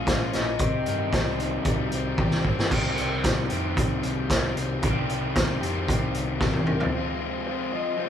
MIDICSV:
0, 0, Header, 1, 7, 480
1, 0, Start_track
1, 0, Tempo, 527704
1, 548, Time_signature, 4, 2, 24, 8
1, 7359, End_track
2, 0, Start_track
2, 0, Title_t, "Tonewheel organ"
2, 0, Program_c, 0, 16
2, 0, Note_on_c, 0, 65, 69
2, 0, Note_on_c, 0, 70, 64
2, 0, Note_on_c, 0, 80, 60
2, 0, Note_on_c, 0, 85, 73
2, 512, Note_off_c, 0, 85, 0
2, 518, Note_off_c, 0, 80, 0
2, 520, Note_off_c, 0, 65, 0
2, 531, Note_off_c, 0, 70, 0
2, 553, Note_on_c, 0, 84, 75
2, 554, Note_on_c, 0, 79, 60
2, 555, Note_on_c, 0, 72, 67
2, 560, Note_on_c, 0, 63, 69
2, 2453, Note_off_c, 0, 79, 0
2, 2453, Note_off_c, 0, 84, 0
2, 2454, Note_off_c, 0, 72, 0
2, 2456, Note_off_c, 0, 63, 0
2, 2478, Note_on_c, 0, 63, 64
2, 2482, Note_on_c, 0, 72, 61
2, 2485, Note_on_c, 0, 84, 70
2, 2486, Note_on_c, 0, 79, 57
2, 4379, Note_off_c, 0, 79, 0
2, 4399, Note_on_c, 0, 77, 63
2, 6277, Note_off_c, 0, 63, 0
2, 6279, Note_off_c, 0, 72, 0
2, 6280, Note_off_c, 0, 84, 0
2, 6294, Note_off_c, 0, 77, 0
2, 6326, Note_on_c, 0, 65, 73
2, 6331, Note_on_c, 0, 75, 65
2, 6341, Note_on_c, 0, 80, 68
2, 6344, Note_on_c, 0, 84, 73
2, 7359, Note_off_c, 0, 65, 0
2, 7359, Note_off_c, 0, 75, 0
2, 7359, Note_off_c, 0, 80, 0
2, 7359, Note_off_c, 0, 84, 0
2, 7359, End_track
3, 0, Start_track
3, 0, Title_t, "Clean electric guitar"
3, 0, Program_c, 1, 27
3, 0, Note_on_c, 1, 77, 102
3, 314, Note_off_c, 1, 77, 0
3, 317, Note_on_c, 1, 75, 84
3, 1958, Note_off_c, 1, 75, 0
3, 5844, Note_on_c, 1, 70, 74
3, 6313, Note_off_c, 1, 70, 0
3, 6316, Note_on_c, 1, 72, 87
3, 6778, Note_off_c, 1, 72, 0
3, 6789, Note_on_c, 1, 72, 93
3, 7032, Note_on_c, 1, 75, 96
3, 7036, Note_off_c, 1, 72, 0
3, 7273, Note_on_c, 1, 72, 91
3, 7277, Note_off_c, 1, 75, 0
3, 7359, Note_off_c, 1, 72, 0
3, 7359, End_track
4, 0, Start_track
4, 0, Title_t, "Overdriven electric guitar"
4, 0, Program_c, 2, 29
4, 0, Note_on_c, 2, 46, 67
4, 0, Note_on_c, 2, 53, 66
4, 0, Note_on_c, 2, 58, 68
4, 0, Note_on_c, 2, 61, 74
4, 0, Note_on_c, 2, 65, 69
4, 535, Note_off_c, 2, 46, 0
4, 547, Note_off_c, 2, 53, 0
4, 551, Note_off_c, 2, 58, 0
4, 551, Note_on_c, 2, 51, 67
4, 555, Note_off_c, 2, 61, 0
4, 556, Note_off_c, 2, 65, 0
4, 557, Note_on_c, 2, 55, 68
4, 563, Note_on_c, 2, 60, 74
4, 566, Note_on_c, 2, 67, 73
4, 2467, Note_off_c, 2, 51, 0
4, 2472, Note_off_c, 2, 55, 0
4, 2477, Note_off_c, 2, 60, 0
4, 2479, Note_off_c, 2, 67, 0
4, 7359, End_track
5, 0, Start_track
5, 0, Title_t, "Overdriven electric guitar"
5, 0, Program_c, 3, 29
5, 0, Note_on_c, 3, 53, 71
5, 0, Note_on_c, 3, 56, 77
5, 0, Note_on_c, 3, 61, 73
5, 60, Note_on_c, 3, 65, 72
5, 280, Note_off_c, 3, 61, 0
5, 291, Note_on_c, 3, 61, 73
5, 539, Note_off_c, 3, 61, 0
5, 539, Note_on_c, 3, 48, 69
5, 543, Note_off_c, 3, 56, 0
5, 544, Note_off_c, 3, 65, 0
5, 546, Note_off_c, 3, 53, 0
5, 778, Note_on_c, 3, 51, 72
5, 1029, Note_on_c, 3, 55, 69
5, 1255, Note_off_c, 3, 51, 0
5, 1266, Note_on_c, 3, 51, 64
5, 1512, Note_off_c, 3, 55, 0
5, 1523, Note_on_c, 3, 55, 71
5, 1745, Note_off_c, 3, 48, 0
5, 1762, Note_on_c, 3, 60, 70
5, 2007, Note_on_c, 3, 67, 76
5, 2220, Note_off_c, 3, 60, 0
5, 2231, Note_on_c, 3, 60, 71
5, 2453, Note_off_c, 3, 51, 0
5, 2453, Note_on_c, 3, 48, 91
5, 2460, Note_off_c, 3, 55, 0
5, 2464, Note_on_c, 3, 51, 89
5, 2470, Note_off_c, 3, 60, 0
5, 2471, Note_on_c, 3, 55, 82
5, 2475, Note_off_c, 3, 67, 0
5, 2481, Note_on_c, 3, 60, 95
5, 2486, Note_on_c, 3, 67, 97
5, 3172, Note_off_c, 3, 51, 0
5, 3175, Note_off_c, 3, 67, 0
5, 3179, Note_on_c, 3, 67, 76
5, 3188, Note_off_c, 3, 60, 0
5, 3192, Note_on_c, 3, 60, 68
5, 3194, Note_off_c, 3, 55, 0
5, 3198, Note_on_c, 3, 55, 76
5, 3209, Note_on_c, 3, 51, 71
5, 3211, Note_off_c, 3, 48, 0
5, 3215, Note_on_c, 3, 48, 71
5, 3890, Note_off_c, 3, 67, 0
5, 3898, Note_off_c, 3, 48, 0
5, 3899, Note_off_c, 3, 55, 0
5, 3905, Note_off_c, 3, 51, 0
5, 3909, Note_on_c, 3, 48, 73
5, 3917, Note_on_c, 3, 51, 79
5, 3923, Note_on_c, 3, 55, 85
5, 3933, Note_off_c, 3, 60, 0
5, 3936, Note_on_c, 3, 60, 85
5, 3940, Note_on_c, 3, 67, 82
5, 4375, Note_off_c, 3, 48, 0
5, 4379, Note_off_c, 3, 51, 0
5, 4382, Note_off_c, 3, 55, 0
5, 4387, Note_on_c, 3, 48, 79
5, 4390, Note_off_c, 3, 67, 0
5, 4394, Note_on_c, 3, 51, 91
5, 4409, Note_off_c, 3, 60, 0
5, 4410, Note_on_c, 3, 55, 97
5, 4413, Note_on_c, 3, 60, 96
5, 4418, Note_on_c, 3, 67, 111
5, 5089, Note_off_c, 3, 67, 0
5, 5094, Note_off_c, 3, 48, 0
5, 5097, Note_off_c, 3, 51, 0
5, 5100, Note_on_c, 3, 67, 87
5, 5102, Note_off_c, 3, 60, 0
5, 5105, Note_off_c, 3, 55, 0
5, 5113, Note_on_c, 3, 60, 78
5, 5120, Note_on_c, 3, 55, 73
5, 5125, Note_on_c, 3, 51, 69
5, 5136, Note_on_c, 3, 48, 62
5, 5803, Note_off_c, 3, 48, 0
5, 5810, Note_off_c, 3, 67, 0
5, 5812, Note_off_c, 3, 51, 0
5, 5814, Note_on_c, 3, 48, 80
5, 5817, Note_off_c, 3, 55, 0
5, 5817, Note_off_c, 3, 60, 0
5, 5823, Note_on_c, 3, 51, 79
5, 5828, Note_on_c, 3, 55, 85
5, 5832, Note_on_c, 3, 60, 80
5, 5842, Note_on_c, 3, 67, 93
5, 6287, Note_off_c, 3, 48, 0
5, 6291, Note_off_c, 3, 51, 0
5, 6294, Note_off_c, 3, 55, 0
5, 6296, Note_off_c, 3, 60, 0
5, 6301, Note_off_c, 3, 67, 0
5, 6318, Note_on_c, 3, 41, 79
5, 6321, Note_on_c, 3, 48, 88
5, 6324, Note_on_c, 3, 53, 93
5, 6336, Note_on_c, 3, 56, 96
5, 6336, Note_on_c, 3, 60, 96
5, 6343, Note_on_c, 3, 65, 100
5, 6784, Note_off_c, 3, 53, 0
5, 6788, Note_on_c, 3, 53, 72
5, 6791, Note_off_c, 3, 56, 0
5, 6794, Note_on_c, 3, 56, 82
5, 6800, Note_off_c, 3, 60, 0
5, 6804, Note_on_c, 3, 60, 78
5, 6811, Note_off_c, 3, 65, 0
5, 6815, Note_on_c, 3, 65, 81
5, 7019, Note_off_c, 3, 65, 0
5, 7020, Note_off_c, 3, 60, 0
5, 7023, Note_on_c, 3, 65, 75
5, 7031, Note_on_c, 3, 60, 75
5, 7034, Note_off_c, 3, 48, 0
5, 7038, Note_off_c, 3, 56, 0
5, 7042, Note_on_c, 3, 56, 60
5, 7048, Note_off_c, 3, 53, 0
5, 7051, Note_on_c, 3, 53, 56
5, 7235, Note_off_c, 3, 41, 0
5, 7239, Note_on_c, 3, 41, 104
5, 7250, Note_off_c, 3, 53, 0
5, 7254, Note_on_c, 3, 53, 95
5, 7256, Note_off_c, 3, 56, 0
5, 7256, Note_on_c, 3, 48, 102
5, 7257, Note_off_c, 3, 60, 0
5, 7259, Note_on_c, 3, 56, 101
5, 7268, Note_off_c, 3, 65, 0
5, 7268, Note_on_c, 3, 60, 100
5, 7272, Note_on_c, 3, 65, 107
5, 7359, Note_off_c, 3, 41, 0
5, 7359, Note_off_c, 3, 48, 0
5, 7359, Note_off_c, 3, 53, 0
5, 7359, Note_off_c, 3, 56, 0
5, 7359, Note_off_c, 3, 60, 0
5, 7359, Note_off_c, 3, 65, 0
5, 7359, End_track
6, 0, Start_track
6, 0, Title_t, "Picked electric bass"
6, 0, Program_c, 4, 34
6, 67, Note_on_c, 4, 34, 87
6, 268, Note_off_c, 4, 34, 0
6, 316, Note_on_c, 4, 34, 95
6, 513, Note_off_c, 4, 34, 0
6, 543, Note_on_c, 4, 36, 97
6, 746, Note_off_c, 4, 36, 0
6, 795, Note_on_c, 4, 43, 92
6, 993, Note_off_c, 4, 43, 0
6, 1025, Note_on_c, 4, 36, 93
6, 1428, Note_off_c, 4, 36, 0
6, 1503, Note_on_c, 4, 36, 87
6, 1706, Note_off_c, 4, 36, 0
6, 1755, Note_on_c, 4, 36, 86
6, 1953, Note_off_c, 4, 36, 0
6, 1982, Note_on_c, 4, 36, 92
6, 2185, Note_off_c, 4, 36, 0
6, 2225, Note_on_c, 4, 31, 93
6, 2427, Note_off_c, 4, 31, 0
6, 2468, Note_on_c, 4, 36, 98
6, 2683, Note_off_c, 4, 36, 0
6, 2715, Note_on_c, 4, 36, 85
6, 2926, Note_off_c, 4, 36, 0
6, 2950, Note_on_c, 4, 36, 92
6, 3164, Note_off_c, 4, 36, 0
6, 3195, Note_on_c, 4, 41, 85
6, 3407, Note_off_c, 4, 41, 0
6, 3430, Note_on_c, 4, 36, 84
6, 3644, Note_off_c, 4, 36, 0
6, 3674, Note_on_c, 4, 36, 90
6, 3886, Note_off_c, 4, 36, 0
6, 3907, Note_on_c, 4, 36, 89
6, 4122, Note_off_c, 4, 36, 0
6, 4148, Note_on_c, 4, 36, 91
6, 4363, Note_off_c, 4, 36, 0
6, 4389, Note_on_c, 4, 36, 97
6, 4603, Note_off_c, 4, 36, 0
6, 4630, Note_on_c, 4, 36, 87
6, 4844, Note_off_c, 4, 36, 0
6, 4875, Note_on_c, 4, 36, 95
6, 5087, Note_off_c, 4, 36, 0
6, 5110, Note_on_c, 4, 41, 83
6, 5324, Note_off_c, 4, 41, 0
6, 5353, Note_on_c, 4, 36, 91
6, 5566, Note_off_c, 4, 36, 0
6, 5588, Note_on_c, 4, 36, 90
6, 5803, Note_off_c, 4, 36, 0
6, 5827, Note_on_c, 4, 36, 94
6, 6042, Note_off_c, 4, 36, 0
6, 6066, Note_on_c, 4, 36, 80
6, 6281, Note_off_c, 4, 36, 0
6, 7359, End_track
7, 0, Start_track
7, 0, Title_t, "Drums"
7, 63, Note_on_c, 9, 36, 114
7, 66, Note_on_c, 9, 42, 85
7, 71, Note_on_c, 9, 38, 107
7, 154, Note_off_c, 9, 36, 0
7, 157, Note_off_c, 9, 42, 0
7, 162, Note_off_c, 9, 38, 0
7, 302, Note_on_c, 9, 42, 65
7, 306, Note_on_c, 9, 38, 70
7, 393, Note_off_c, 9, 42, 0
7, 397, Note_off_c, 9, 38, 0
7, 535, Note_on_c, 9, 42, 89
7, 542, Note_on_c, 9, 36, 109
7, 626, Note_off_c, 9, 42, 0
7, 633, Note_off_c, 9, 36, 0
7, 781, Note_on_c, 9, 42, 63
7, 872, Note_off_c, 9, 42, 0
7, 1024, Note_on_c, 9, 36, 109
7, 1030, Note_on_c, 9, 42, 89
7, 1035, Note_on_c, 9, 38, 114
7, 1115, Note_off_c, 9, 36, 0
7, 1121, Note_off_c, 9, 42, 0
7, 1126, Note_off_c, 9, 38, 0
7, 1269, Note_on_c, 9, 42, 64
7, 1360, Note_off_c, 9, 42, 0
7, 1498, Note_on_c, 9, 42, 90
7, 1502, Note_on_c, 9, 36, 106
7, 1589, Note_off_c, 9, 42, 0
7, 1593, Note_off_c, 9, 36, 0
7, 1742, Note_on_c, 9, 42, 68
7, 1833, Note_off_c, 9, 42, 0
7, 1981, Note_on_c, 9, 48, 61
7, 1983, Note_on_c, 9, 36, 106
7, 2072, Note_off_c, 9, 48, 0
7, 2074, Note_off_c, 9, 36, 0
7, 2101, Note_on_c, 9, 38, 64
7, 2192, Note_off_c, 9, 38, 0
7, 2225, Note_on_c, 9, 36, 81
7, 2316, Note_off_c, 9, 36, 0
7, 2356, Note_on_c, 9, 38, 89
7, 2447, Note_off_c, 9, 38, 0
7, 2467, Note_on_c, 9, 36, 104
7, 2468, Note_on_c, 9, 49, 113
7, 2558, Note_off_c, 9, 36, 0
7, 2559, Note_off_c, 9, 49, 0
7, 2704, Note_on_c, 9, 42, 65
7, 2795, Note_off_c, 9, 42, 0
7, 2947, Note_on_c, 9, 42, 96
7, 2948, Note_on_c, 9, 36, 111
7, 2951, Note_on_c, 9, 38, 103
7, 3038, Note_off_c, 9, 42, 0
7, 3039, Note_off_c, 9, 36, 0
7, 3042, Note_off_c, 9, 38, 0
7, 3180, Note_on_c, 9, 42, 66
7, 3271, Note_off_c, 9, 42, 0
7, 3429, Note_on_c, 9, 36, 110
7, 3432, Note_on_c, 9, 42, 100
7, 3520, Note_off_c, 9, 36, 0
7, 3523, Note_off_c, 9, 42, 0
7, 3666, Note_on_c, 9, 42, 70
7, 3756, Note_off_c, 9, 42, 0
7, 3909, Note_on_c, 9, 36, 103
7, 3912, Note_on_c, 9, 42, 101
7, 3917, Note_on_c, 9, 38, 118
7, 4000, Note_off_c, 9, 36, 0
7, 4003, Note_off_c, 9, 42, 0
7, 4008, Note_off_c, 9, 38, 0
7, 4155, Note_on_c, 9, 42, 69
7, 4246, Note_off_c, 9, 42, 0
7, 4388, Note_on_c, 9, 42, 96
7, 4393, Note_on_c, 9, 36, 117
7, 4479, Note_off_c, 9, 42, 0
7, 4484, Note_off_c, 9, 36, 0
7, 4633, Note_on_c, 9, 42, 67
7, 4724, Note_off_c, 9, 42, 0
7, 4873, Note_on_c, 9, 36, 118
7, 4874, Note_on_c, 9, 42, 96
7, 4878, Note_on_c, 9, 38, 113
7, 4964, Note_off_c, 9, 36, 0
7, 4965, Note_off_c, 9, 42, 0
7, 4969, Note_off_c, 9, 38, 0
7, 5120, Note_on_c, 9, 42, 66
7, 5211, Note_off_c, 9, 42, 0
7, 5353, Note_on_c, 9, 36, 115
7, 5361, Note_on_c, 9, 42, 97
7, 5444, Note_off_c, 9, 36, 0
7, 5452, Note_off_c, 9, 42, 0
7, 5589, Note_on_c, 9, 42, 67
7, 5680, Note_off_c, 9, 42, 0
7, 5826, Note_on_c, 9, 38, 63
7, 5828, Note_on_c, 9, 36, 109
7, 5917, Note_off_c, 9, 38, 0
7, 5919, Note_off_c, 9, 36, 0
7, 5941, Note_on_c, 9, 48, 64
7, 6032, Note_off_c, 9, 48, 0
7, 6064, Note_on_c, 9, 45, 81
7, 6155, Note_off_c, 9, 45, 0
7, 6188, Note_on_c, 9, 43, 91
7, 6279, Note_off_c, 9, 43, 0
7, 7359, End_track
0, 0, End_of_file